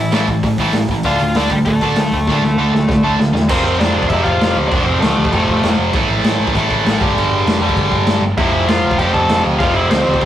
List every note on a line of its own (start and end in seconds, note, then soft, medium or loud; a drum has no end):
0.00 0.11 A1 medium
0.00 0.11 A2 medium
0.00 0.12 E3 medium
0.00 0.25 E4 medium
0.00 0.24 E5 medium
0.12 0.27 A1 medium
0.12 0.27 A2 medium
0.12 0.28 E3 medium
0.12 0.28 A3 medium
0.12 snare loud
0.12 open hi-hat medium
0.28 0.42 A1 medium
0.28 0.42 A2 medium
0.28 0.42 E3 medium
0.28 kick medium
0.28 open hi-hat medium
0.43 0.57 A1 medium
0.43 0.58 A2 medium
0.43 0.58 E3 medium
0.43 kick loud
0.43 open hi-hat medium
0.58 0.72 A1 medium
0.58 0.74 A2 medium
0.58 0.74 E3 medium
0.58 0.74 A3 medium
0.58 kick medium
0.58 open hi-hat medium
0.73 0.88 A1 medium
0.73 0.88 A2 medium
0.73 0.89 E3 medium
0.73 snare loud
0.73 open hi-hat medium
0.88 1.03 A1 medium
0.88 1.04 A2 medium
0.88 1.04 E3 medium
0.88 kick medium
0.88 open hi-hat medium
1.03 1.18 D2 medium
1.03 1.19 D3 medium
1.03 1.19 A3 medium
1.03 1.19 D4 medium
1.03 1.34 F4 medium
1.03 1.37 F5 loud
1.03 kick medium
1.03 open hi-hat medium
1.19 1.34 D2 medium
1.19 1.34 D3 medium
1.19 1.34 A3 medium
1.19 open hi-hat medium
1.35 1.50 D2 medium
1.35 1.49 D3 medium
1.35 1.49 A3 medium
1.35 1.51 D4 loud
1.35 1.52 D5 loud
1.35 snare loud
1.35 open hi-hat medium
1.39 1.51 D4 medium
1.50 1.64 D2 medium
1.50 1.64 D3 medium
1.50 1.57 G3 medium
1.50 1.64 A3 medium
1.50 1.55 G4 medium
1.50 kick medium
1.50 open hi-hat medium
1.65 1.80 D2 medium
1.65 1.80 D3 medium
1.65 1.80 A3 medium
1.65 3.15 A3 medium
1.65 3.14 A4 medium
1.65 kick medium
1.65 open hi-hat medium
1.81 1.95 D2 medium
1.81 1.96 D3 medium
1.81 1.96 A3 medium
1.81 1.96 D4 loud
1.81 kick medium
1.81 open hi-hat medium
1.95 2.10 D2 medium
1.95 2.11 D3 medium
1.95 2.11 A3 medium
1.95 snare loud
1.95 open hi-hat medium
2.12 2.26 D2 medium
2.12 2.26 D3 medium
2.12 2.26 A3 medium
2.12 kick medium
2.12 open hi-hat medium
2.27 2.41 D2 medium
2.27 2.41 D3 medium
2.27 2.42 A3 medium
2.27 2.42 D4 medium
2.27 kick medium
2.27 snare medium
2.42 2.56 D2 medium
2.42 2.56 D3 medium
2.42 2.57 A3 medium
2.42 snare medium
2.57 2.71 D2 medium
2.57 2.72 D3 medium
2.57 2.72 A3 medium
2.57 2.73 D4 medium
2.73 2.87 D2 medium
2.73 2.87 D3 medium
2.73 2.87 A3 medium
2.73 snare medium
2.88 3.02 D2 medium
2.88 3.02 D3 medium
2.88 3.02 A3 medium
2.88 kick loud
2.88 snare medium
3.03 3.17 D2 medium
3.03 3.18 D3 medium
3.03 3.17 A3 medium
3.03 3.18 D4 loud
3.18 3.32 D2 medium
3.18 3.32 D3 medium
3.18 3.32 A3 medium
3.18 snare medium
3.33 3.48 E2 medium
3.33 3.47 D3 medium
3.33 3.48 A3 medium
3.33 snare medium
3.49 3.60 F1 medium
3.49 4.09 F2 medium
3.49 4.10 C3 medium
3.49 4.10 F3 loud
3.49 3.64 C4 medium
3.49 3.63 C5 medium
3.49 kick loud
3.49 crash loud
3.49 crash medium
3.64 3.75 F1 medium
3.64 3.79 C4 medium
3.64 3.78 C5 medium
3.78 3.90 F2 medium
3.78 4.09 D4 medium
3.78 4.09 D5 loud
3.78 snare loud
3.78 crash medium
3.96 4.06 F1 medium
4.03 kick medium
4.09 4.21 F1 medium
4.09 4.71 F2 medium
4.09 4.72 C3 medium
4.09 4.25 E4 medium
4.09 4.23 E5 loud
4.09 kick loud
4.09 crash medium
4.13 4.72 F3 medium
4.23 4.36 F1 medium
4.23 4.54 F4 medium
4.23 4.55 F5 loud
4.23 kick medium
4.40 4.51 F1 medium
4.40 snare loud
4.40 crash medium
4.56 4.66 D2 medium
4.68 4.82 F1 medium
4.68 5.31 F2 medium
4.68 4.86 D4 medium
4.68 4.86 D5 loud
4.68 kick loud
4.68 crash medium
4.73 5.32 C3 loud
4.73 5.33 F3 loud
4.84 4.97 F1 medium
4.84 5.01 C4 medium
4.84 4.99 C5 loud
5.00 5.12 D2 medium
5.00 5.74 A3 medium
5.00 5.73 A4 medium
5.00 snare loud
5.00 crash medium
5.17 5.28 D2 medium
5.25 kick medium
5.32 5.43 F1 medium
5.32 5.93 F2 medium
5.32 5.93 C3 medium
5.32 5.94 F3 medium
5.32 kick medium
5.32 crash medium
5.48 5.58 F1 medium
5.48 kick medium
5.63 5.74 F1 medium
5.63 snare loud
5.63 crash medium
5.78 5.88 F1 medium
5.93 6.04 A1 medium
5.93 6.52 A2 medium
5.93 6.54 E3 loud
5.93 6.55 A3 loud
5.93 kick loud
5.93 crash medium
6.09 6.20 A1 medium
6.24 6.34 A2 medium
6.24 snare loud
6.24 crash medium
6.40 6.50 A1 medium
6.47 kick medium
6.53 6.66 A1 medium
6.53 6.99 A2 medium
6.53 7.00 E3 medium
6.53 7.00 A3 medium
6.53 kick loud
6.53 crash medium
6.70 6.81 A1 loud
6.70 kick medium
6.85 6.96 A1 medium
6.85 snare loud
6.85 crash medium
7.00 7.11 G1 medium
7.00 7.60 G2 loud
7.00 7.61 D3 loud
7.00 7.60 G3 loud
7.00 kick loud
7.15 7.26 G1 loud
7.15 crash medium
7.31 7.42 G1 medium
7.46 7.56 F1 medium
7.46 snare loud
7.46 crash medium
7.61 7.72 F2 medium
7.61 8.23 G2 medium
7.61 8.23 D3 medium
7.61 8.22 G3 medium
7.69 kick loud
7.77 7.87 G1 medium
7.77 kick loud
7.77 crash medium
7.91 8.02 G1 medium
7.91 kick medium
8.07 8.17 G1 medium
8.07 snare loud
8.07 crash medium
8.21 8.32 G1 medium
8.37 8.48 F1 medium
8.37 8.98 F2 medium
8.37 8.99 C3 medium
8.37 8.99 F3 loud
8.37 8.52 E4 medium
8.37 8.52 E5 loud
8.37 kick loud
8.37 crash medium
8.52 8.63 F1 medium
8.52 8.67 E4 medium
8.52 8.68 E5 medium
8.67 8.78 F2 medium
8.67 8.97 F4 medium
8.67 8.99 F5 loud
8.67 snare loud
8.67 crash medium
8.83 8.94 F1 medium
8.91 kick loud
8.99 9.10 F1 medium
8.99 9.58 F2 medium
8.99 9.60 C3 medium
8.99 9.61 F3 medium
8.99 9.14 G4 medium
8.99 9.13 G5 loud
8.99 kick loud
8.99 crash medium
9.14 9.25 F1 medium
9.14 9.43 A4 medium
9.14 9.42 A5 loud
9.14 kick medium
9.29 9.40 F1 medium
9.29 snare loud
9.29 crash medium
9.45 9.55 D2 loud
9.59 9.71 F1 loud
9.59 10.19 F2 medium
9.59 10.21 C3 loud
9.59 10.21 F3 loud
9.59 9.75 F4 medium
9.59 9.74 F5 loud
9.59 kick loud
9.59 crash medium
9.74 9.86 F1 medium
9.74 9.90 E4 medium
9.74 9.91 E5 medium
9.90 10.01 D2 medium
9.90 10.25 C4 medium
9.90 10.25 C5 medium
9.90 snare loud
9.90 crash medium
10.06 10.17 D2 medium
10.14 kick medium
10.20 10.25 F1 medium
10.20 10.25 F2 medium
10.20 kick loud
10.20 crash medium